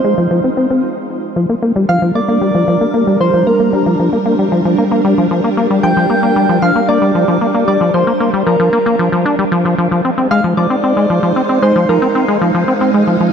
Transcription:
Already playing: string machine G#3 D#4 F4 C5 F5, soft synth lead C5
0.04 acid bass G#3
0.18 acid bass F3
0.31 acid bass F3
0.44 acid bass C4
0.57 acid bass C4
0.70 acid bass C4
1.36 acid bass F3, string machine G3
1.49 acid bass A#3
1.62 acid bass A#3
1.67 string machine D4
1.76 acid bass G3
1.84 string machine A#4
1.89 acid bass F3, soft synth lead F5
2.02 acid bass F3
2.15 acid bass A#3, soft synth lead D5
2.28 acid bass A#3
2.41 acid bass G3
2.55 acid bass F3
2.68 acid bass F3
2.81 acid bass A#3
2.94 acid bass A#3
3.07 acid bass G3
3.20 acid bass F3, soft synth lead C5
3.34 acid bass F3
3.47 acid bass A#3, soft synth lead A#4
3.60 acid bass A#3
3.73 acid bass G3
3.86 acid bass F3
3.99 acid bass F3
4.13 acid bass A#3
4.26 acid bass A#3
4.39 acid bass G3
4.52 acid bass F3
4.65 acid bass F3
4.78 acid bass A#3
4.91 acid bass A#3
5.05 acid bass G3
5.18 acid bass F3
5.31 acid bass F3
5.44 acid bass A#3
5.57 acid bass A#3
5.70 acid bass G3
5.83 acid bass F3, soft synth lead G5
5.97 acid bass F3
6.10 acid bass A#3
6.23 acid bass A#3
6.36 acid bass G3
6.49 acid bass F3
6.62 acid bass F3, soft synth lead F5
6.76 acid bass A#3
6.89 acid bass A#3, soft synth lead D5
7.02 acid bass G3
7.15 acid bass F3
7.28 acid bass F3
7.41 acid bass A#3
7.54 acid bass A#3
7.68 acid bass G3, soft synth lead D5
7.81 acid bass F3
7.94 acid bass F3, soft synth lead C5
8.07 acid bass A#3
8.20 acid bass A#3
8.33 acid bass G3
8.47 acid bass F3, soft synth lead A#4
8.60 acid bass F3
8.73 acid bass A#3
8.86 acid bass A#3
8.99 acid bass F3
9.12 acid bass F3
9.26 acid bass D4
9.39 acid bass G3
9.52 acid bass F3
9.65 acid bass F3
9.78 acid bass F3, string machine G#3
9.91 acid bass F3
10.05 acid bass C4, string machine D#4
10.18 acid bass C4
10.31 acid bass G#3, soft synth lead F5
10.35 string machine C5
10.44 acid bass F3
10.57 acid bass F3, soft synth lead D5
10.70 acid bass C4
10.84 acid bass C4
10.97 acid bass G#3
11.10 acid bass F3
11.23 acid bass F3
11.36 acid bass C4
11.45 string machine F5
11.49 acid bass C4
11.62 acid bass G#3, soft synth lead C5
11.76 acid bass F3
11.89 acid bass F3, soft synth lead A#4
12.02 acid bass C4
12.15 acid bass C4
12.28 acid bass G#3
12.42 acid bass F3
12.55 acid bass F3
12.68 acid bass C4
12.81 acid bass C4
12.94 acid bass G#3
13.07 acid bass F3
13.20 acid bass F3

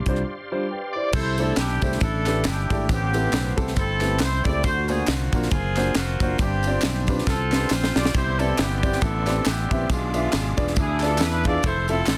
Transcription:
Already playing: tonewheel organ G4 D5 F5 C6
0.06 fingered electric bass C2, grand piano G3 D4 F4 C5, kick, closed hi-hat
0.15 cross-stick
0.52 grand piano G3 D4 F4 C5
0.71 grand piano B4 G5
0.93 grand piano E4 C5, horn section D5
1.13 fingered electric bass C2, grand piano C3, horn section E4 A4 C5, kick, crash, tambourine
1.38 grand piano A3 D4 E4 G4 C5, horn section A4, ride, tambourine
1.56 fingered electric bass B1, horn section D4 E4 G4, snare, clap, ride, tambourine
1.82 fingered electric bass C2, grand piano A3 D4 E4 G4 C5, kick, ride, tambourine
1.92 snare
2.00 fingered electric bass A1, horn section D4 E4 A4, kick, ride, tambourine
2.26 grand piano A3 D4 E4 G4 B4, snare, clap, ride, tambourine
2.44 fingered electric bass G1, horn section D4 E4 G4, snare, clap, ride, tambourine
2.70 fingered electric bass G#1, grand piano A3 D4 E4 G4 D5, kick, ride, tambourine
2.89 fingered electric bass A1, grand piano A2, horn section B3 C4 G4, kick, ride, tambourine
3.13 grand piano A3 C4 E4 G4 B4, ride, tambourine
3.33 fingered electric bass B1, snare, clap, ride, tambourine
3.57 fingered electric bass C2, grand piano A3 C4 E4 G4 A4, kick, ride, tambourine
3.67 snare
3.76 fingered electric bass G1, horn section C4 E4 A4, kick, ride, tambourine
4.00 grand piano A3 C4 E4 G4 B4, snare, clap, ride, tambourine
4.19 fingered electric bass C2, horn section C5, snare, clap, ride, tambourine
4.44 grand piano A3 C4 E4 G4 D5, horn section D5, kick, ride, tambourine
4.63 fingered electric bass D2, grand piano D3, horn section F4 F#4 C5, kick, ride, tambourine
4.88 grand piano A#3 D4 F4 F#4 C5, horn section G#4, ride, tambourine
5.07 fingered electric bass C2, horn section A#3 C4 F#4, snare, clap, ride, tambourine
5.32 fingered electric bass A#1, grand piano A#3 D4 F4 F#4 A#4, kick, ride, tambourine
5.42 snare
5.51 fingered electric bass F#1, horn section C4 F4 G#4, kick, ride, tambourine
5.76 grand piano A#3 D4 F4 F#4 C5, snare, clap, ride, tambourine
5.95 fingered electric bass F1, horn section A#3 C4 F#4, snare, clap, ride, tambourine
6.20 fingered electric bass F#1, grand piano A#3 D4 F4 F#4 C5, kick, ride, tambourine
6.38 fingered electric bass G1, grand piano G2, horn section C4 D4 G4, kick, ride, tambourine
6.63 grand piano C4 D4 G4, ride, tambourine
6.67 grand piano F4 D5
6.81 fingered electric bass B1, snare, clap, ride, tambourine
7.07 grand piano C4 D4 F4 G4 B4, kick, ride, tambourine
7.18 snare
7.26 fingered electric bass C2, horn section C4 F4 A4, kick, snare, tambourine
7.51 grand piano C4 D4 F4 G4 B4, snare, clap, tambourine
7.70 fingered electric bass A#1, horn section C5, snare, clap, tambourine
7.84 snare
7.95 fingered electric bass B1, grand piano C4 D4 F4 G4 D5, horn section D5, snare, tambourine
8.06 snare
8.14 fingered electric bass C2, grand piano C3, tonewheel organ B3 D5 E5 C6, horn section E4 G4 C5, kick, ride, tambourine
8.39 grand piano C4 E4 G4 B4 D5, horn section A4, ride, tambourine
8.58 fingered electric bass G1, horn section B3 E4 G4, snare, clap, ride, tambourine
8.83 grand piano C4 E4 G4 B4 D5, kick, ride, tambourine
8.92 snare
9.01 fingered electric bass A1, horn section D4 E4 A4, kick, ride, tambourine
9.26 grand piano C4 E4 G4 B4 D5, snare, clap, ride, tambourine
9.45 fingered electric bass A1, horn section B3 E4 G4, snare, clap, ride, tambourine
9.71 fingered electric bass A#1, grand piano C4 E4 G4 B4 E5, kick, ride, tambourine
9.89 fingered electric bass B1, grand piano B2, horn section G#3 D4 F4, tonewheel organ G#4 F5 D6, kick, ride, tambourine
10.14 grand piano D4 F4 G#4 B4 E5, ride, tambourine
10.32 fingered electric bass G#1, snare, clap, ride, tambourine
10.57 fingered electric bass E1, grand piano D4 F4 G#4 B4 D5, kick, ride, tambourine
10.67 snare
10.76 fingered electric bass D2, horn section D4 E4 G#4, kick, ride, tambourine
11.00 grand piano D4 F4 G#4 B4 D5, snare, clap, ride, tambourine
11.04 horn section A4
11.18 fingered electric bass E2, horn section B4, snare, clap, ride, tambourine
11.44 grand piano D4 F4 G#4 B4 F5, horn section D5, kick, ride, tambourine
11.63 fingered electric bass F1, horn section E4 A4 C5, tonewheel organ A4 C6, kick, ride, tambourine
11.88 horn section C4 E4 A4, grand piano C4 E4 F4 A4 E5, ride, tambourine
12.06 fingered electric bass A1, snare, clap, ride, tambourine

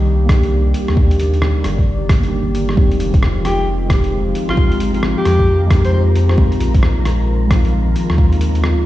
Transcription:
Already playing: sub bass C2, ambient pad D#3 G3 A#3 G4 D5, synth keys A#3 D4 D#4 G4
0.25 synth keys A#3 D4, kick, cross-stick, closed hi-hat
0.30 synth keys D#4 G4
0.43 closed hi-hat
0.74 closed hi-hat
0.88 sub bass D#2, cross-stick
0.95 synth keys A#3 D4 D#4 G4, kick
1.11 closed hi-hat
1.19 closed hi-hat
1.30 synth keys A#3 D4
1.34 synth keys D#4 G4, closed hi-hat
1.42 cross-stick
1.64 sub bass G1, cross-stick, closed hi-hat
1.78 kick
1.87 sub bass G1
2.09 kick, cross-stick, closed hi-hat
2.20 synth keys A#3 D4, closed hi-hat
2.25 synth keys D#4 G4
2.46 sub bass G1
2.55 closed hi-hat
2.69 cross-stick
2.75 sub bass F1, ambient pad F3 G#3 C4 F4, synth keys G#3 C4 D#4 G4, synth texture A#3 A#4, kick
2.91 closed hi-hat
3.00 closed hi-hat
3.10 synth keys G#3 C4, kick
3.14 synth keys D#4 G4, closed hi-hat
3.22 cross-stick
3.45 alto saxophone G4, cross-stick, closed hi-hat
3.86 synth keys G#3 C4
3.90 synth keys D#4 G4, kick, cross-stick, closed hi-hat
4.04 closed hi-hat
4.35 closed hi-hat
4.49 sub bass G#1, alto saxophone F4, cross-stick
4.55 synth keys G#3 C4 D#4 G4, kick
4.72 closed hi-hat
4.80 closed hi-hat
4.90 synth keys G#3 C4
4.94 synth keys D#4 G4, closed hi-hat
5.03 cross-stick
5.17 alto saxophone G4
5.25 sub bass F2, cross-stick, closed hi-hat
5.39 kick
5.66 synth keys G#3 C4
5.70 synth keys D#4 G4, kick, cross-stick, closed hi-hat
5.85 alto saxophone C5, closed hi-hat
5.93 alto saxophone C5
6.16 closed hi-hat
6.29 cross-stick
6.36 sub bass A#1, ambient pad D#3 A#3 F4, synth keys G#3 C4 D#4, kick
6.40 synth keys F4
6.52 closed hi-hat
6.61 closed hi-hat
6.71 synth keys G#3 C4, kick
6.75 synth keys D#4 F4, closed hi-hat
6.83 cross-stick
7.06 cross-stick, closed hi-hat
7.47 synth keys G#3 C4, kick, cross-stick, closed hi-hat
7.52 synth keys D#4 F4
7.65 closed hi-hat
7.96 closed hi-hat
8.10 sub bass D#2, cross-stick
8.16 synth keys G#3 C4 D#4 F4, kick
8.33 closed hi-hat
8.41 closed hi-hat
8.51 synth keys G#3 C4
8.55 synth keys D#4 F4, closed hi-hat
8.64 cross-stick

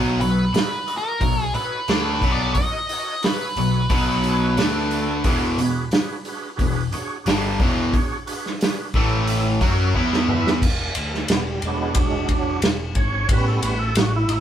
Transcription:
Already playing: picked electric bass B1, overdriven electric guitar B2 F#3 B3, tonewheel organ D#4 F#4 A4 C#5
0.20 picked electric bass B1, overdriven electric guitar B2 F#3, tonewheel organ D#4 F#4 A4 C#5, lead electric guitar B4, open hi-hat
0.53 tonewheel organ D#4 F#4 A4 B4, muted picked electric bass stroke, muted overdriven electric guitar stroke, snare, open hi-hat
0.86 tonewheel organ D#4 F#4 A4 D#5, open hi-hat
0.97 lead electric guitar A#4
1.19 picked electric bass B1, overdriven electric guitar B2 F#3, tonewheel organ D#4 F#4 A4 C#5, kick, open hi-hat
1.44 lead electric guitar G#4
1.54 tonewheel organ D#4 F#4 A4 C#5, lead electric guitar B4, muted picked electric bass stroke, muted overdriven electric guitar stroke, open hi-hat
1.88 picked electric bass D2, overdriven electric guitar D3 A3 D4, tonewheel organ D#4 F#4 A4 C#5, snare, open hi-hat
2.21 picked electric bass B1, overdriven electric guitar B2 F#3 B3, tonewheel organ D#4 F#4 A4 D#5, kick, open hi-hat
2.32 lead electric guitar D5
2.52 tonewheel organ D#4 F#4 A4 C#5, lead electric guitar D#5, kick, open hi-hat
2.89 tonewheel organ D#4 F#4 A4 C#5, open hi-hat
3.21 tonewheel organ D#4 F#4 A4 C#5, lead electric guitar B4, snare, open hi-hat
3.56 picked electric bass B1, overdriven electric guitar B2 F#3, tonewheel organ D#4 F#4 A4 C#5, open hi-hat
3.90 picked electric bass B1, overdriven electric guitar B2 F#3 B3, tonewheel organ D#4 F#4 A4 D#5, kick, open hi-hat
4.23 tonewheel organ D#4 F#4 A4 C#5, open hi-hat
4.56 picked electric bass D2, overdriven electric guitar D3 A3 D4, tonewheel organ A3 D4 A4 D5, snare, open hi-hat
4.91 tonewheel organ A3 D4 A4 D5, open hi-hat
5.24 picked electric bass E1, overdriven electric guitar E2 B2 E3, tonewheel organ D4 F#4 G#4 B4, kick, open hi-hat
5.58 picked electric bass E1, overdriven electric guitar E2 B2, tonewheel organ D4 F#4 G#4 B4, open hi-hat
5.91 tonewheel organ D4 F#4 G#4 B4, muted picked electric bass stroke, muted overdriven electric guitar stroke, snare, open hi-hat
6.25 tonewheel organ D4 F#4 G#4 B4, open hi-hat
6.56 picked electric bass E1, tonewheel organ D4 F#4 G#4 B4, kick, open hi-hat
6.61 overdriven electric guitar E2 B2
6.92 tonewheel organ D4 F#4 G#4 C#5, muted picked electric bass stroke, muted overdriven electric guitar stroke, open hi-hat
7.24 picked electric bass G1, overdriven electric guitar G2 D3, tonewheel organ D4 F#4 G#4 B4, snare, open hi-hat
7.28 overdriven electric guitar G3
7.57 picked electric bass E1, overdriven electric guitar E2, tonewheel organ D4 F#4 G#4 B4, kick, open hi-hat
7.62 overdriven electric guitar B2 E3
7.91 tonewheel organ D4 F#4 G#4 C#5, kick, open hi-hat
8.26 tonewheel organ D4 F#4 G#4 B4, open hi-hat
8.46 snare
8.61 tonewheel organ D4 F#4 G#4 B4, snare, open hi-hat
8.94 picked electric bass A1, overdriven electric guitar A2 E3 A3, tonewheel organ A3 E4 A4 E5, kick, open hi-hat
9.27 open hi-hat
9.61 picked electric bass F#2, overdriven electric guitar F#3 C#4 F#4, tonewheel organ D#4 F#4 A4 C#5, kick, open hi-hat
9.94 picked electric bass E2, overdriven electric guitar E3 B3 E4, tonewheel organ B3 E4 B4 E5, kick
10.13 snare
10.26 tonewheel organ B3 E4 B4 E5, mid tom
10.47 snare
10.62 picked electric bass E1, kick, crash
10.95 picked electric bass D2, ride
11.14 snare
11.28 picked electric bass E1, tonewheel organ B3, snare, ride
11.48 tonewheel organ G3
11.62 picked electric bass E1, tonewheel organ G#3, ride
11.67 tonewheel organ F#3 B3 D4
11.95 picked electric bass E1, kick, ride
11.99 tonewheel organ G#3
12.29 picked electric bass E1, kick, ride
12.62 picked electric bass E1, snare, ride
12.95 picked electric bass G#1, tonewheel organ C#5, kick, ride
13.29 picked electric bass A1, tonewheel organ G3 B3 C#4 B4, kick, ride
13.47 tonewheel organ A4
13.63 picked electric bass A1, tonewheel organ B4, ride
13.79 tonewheel organ A4
13.95 picked electric bass A1, tonewheel organ F#4, snare, ride
14.16 tonewheel organ E4
14.29 picked electric bass A1, tonewheel organ D#4, ride
14.33 tonewheel organ E4

